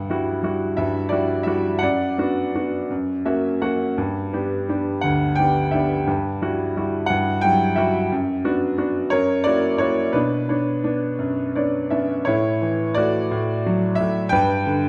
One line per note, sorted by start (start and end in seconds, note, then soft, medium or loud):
0.00 0.76 G2 medium
0.10 0.42 G3 soft
0.10 0.42 E4 soft
0.10 0.43 F#4 soft
0.43 0.98 G3 soft
0.43 0.98 E4 soft
0.43 0.99 F#4 soft
0.77 1.79 G2 soft
0.77 1.13 E5 medium
1.09 1.45 G3 soft
1.09 1.45 E4 soft
1.09 1.46 F#4 soft
1.09 1.46 D5 medium
1.43 1.75 G3 soft
1.43 1.75 E4 soft
1.43 1.82 E5 medium
1.47 1.75 F#4 soft
1.79 2.86 F#2 soft
1.79 2.83 F#5 medium
1.83 2.85 D5 medium
2.18 2.53 B3 soft
2.18 2.54 D4 soft
2.18 2.54 F#4 soft
2.55 2.83 B3 soft
2.55 2.83 D4 soft
2.55 2.83 F#4 soft
2.90 3.94 F#2 soft
3.25 3.60 A#3 soft
3.25 3.60 C#4 soft
3.25 3.61 F#4 soft
3.25 3.58 E5 soft
3.62 3.90 A#3 soft
3.62 3.90 C#4 soft
3.62 3.90 F#4 soft
3.62 3.95 F#5 soft
3.98 6.05 G2 soft
4.33 4.67 B3 soft
4.33 4.67 D4 soft
4.33 4.68 G4 soft
4.69 5.25 B3 soft
4.69 5.25 D4 soft
4.69 5.26 G4 soft
5.01 6.05 D2 soft
5.01 5.39 F#5 medium
5.36 5.72 B3 soft
5.36 5.73 D4 soft
5.36 5.73 G4 soft
5.36 5.73 G5 medium
5.71 6.01 B3 soft
5.71 6.01 D4 soft
5.71 6.01 G4 soft
5.71 6.04 E5 medium
6.07 7.08 G2 medium
6.42 6.75 G3 soft
6.42 6.75 E4 soft
6.42 6.76 F#4 soft
6.77 7.31 G3 soft
6.77 7.31 E4 soft
6.77 7.31 F#4 soft
7.06 8.08 G2 soft
7.06 7.43 F#5 medium
7.41 7.98 F#3 soft
7.41 7.76 G3 soft
7.41 7.76 E4 soft
7.41 7.74 G5 medium
7.76 8.04 G3 soft
7.76 8.05 E4 soft
7.76 8.05 F#4 soft
7.76 8.08 E5 medium
8.12 9.10 F#2 medium
8.44 8.76 B3 soft
8.44 8.76 D4 soft
8.44 8.77 F#4 soft
8.78 9.05 B3 soft
8.78 9.05 D4 soft
8.78 9.05 F#4 soft
9.10 10.11 F#2 medium
9.10 10.10 A#4 medium
9.10 9.46 C#5 medium
9.44 9.79 A#3 soft
9.44 9.79 E4 soft
9.44 9.79 F#4 soft
9.44 9.76 D5 medium
9.78 10.07 A#3 soft
9.78 10.07 E4 soft
9.78 10.07 F#4 soft
9.78 10.11 C#5 medium
10.13 12.22 B2 soft
10.13 10.48 D4 soft
10.13 11.51 B4 medium
10.49 10.82 B3 soft
10.49 10.83 D4 soft
10.49 11.06 C#5 soft
10.84 11.41 B3 soft
10.84 11.41 D4 soft
11.19 12.23 F#2 soft
11.55 11.89 B3 soft
11.55 11.90 D4 soft
11.55 12.13 C#5 soft
11.55 11.89 D5 soft
11.90 12.19 B3 soft
11.90 12.19 C#4 soft
11.90 12.20 D4 soft
11.90 12.24 E5 soft
12.25 13.29 A2 medium
12.25 13.28 E4 medium
12.25 12.98 C#5 medium
12.62 13.29 E3 soft
12.95 13.31 A3 soft
12.95 13.96 F#4 medium
12.95 14.02 D5 medium
13.31 13.99 A2 medium
13.66 14.31 F#3 soft
13.95 14.28 E5 medium
14.00 14.32 A2 soft
14.29 14.89 G2 medium
14.29 14.89 B4 medium
14.29 14.89 G5 medium
14.66 14.89 D3 soft